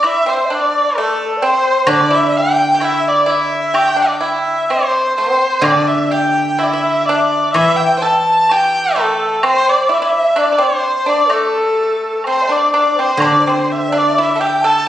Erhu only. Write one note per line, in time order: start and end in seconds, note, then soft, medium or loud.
0.06 0.30 E5 loud
0.29 0.56 C5 medium
0.55 0.98 D5 medium
0.97 1.45 A4 medium
1.44 1.89 C5 medium
1.90 2.16 D5 loud
2.14 2.39 E5 medium
2.37 2.86 G5 medium
2.84 3.10 E5 medium
3.08 3.32 D5 medium
3.30 3.80 E5 medium
3.78 4.01 G5 loud
4.02 4.15 D5 medium
4.13 4.25 G5 medium
4.23 4.72 E5 medium
4.70 5.16 C5 medium
5.16 5.65 C5 medium
5.64 5.89 D5 medium
5.88 6.12 E5 medium
6.11 6.60 G5 medium
6.59 6.65 E5 medium
6.63 6.73 D5 medium
6.72 7.07 E5 medium
7.05 7.52 D5 medium
7.53 7.78 E5 loud
7.76 8.03 G5 medium
8.02 8.54 A5 medium
8.52 9.01 G5 loud
9.00 9.45 A4 medium
9.47 9.70 C5 loud
9.69 9.95 D5 medium
9.94 10.00 E5 medium
9.98 10.09 D5 medium
10.07 10.41 E5 medium
10.40 10.64 D5 medium
10.63 11.11 C5 medium
11.09 11.35 D5 loud
11.34 12.26 A4 medium
12.28 12.53 C5 medium
12.51 12.74 D5 medium
12.74 13.02 D5 medium
13.00 13.27 C5 medium
13.25 13.51 D5 medium
13.49 13.73 C5 medium
13.72 13.99 E5 medium
13.98 14.24 D5 medium
14.23 14.47 E5 medium
14.46 14.68 G5 medium
14.67 14.88 A5 loud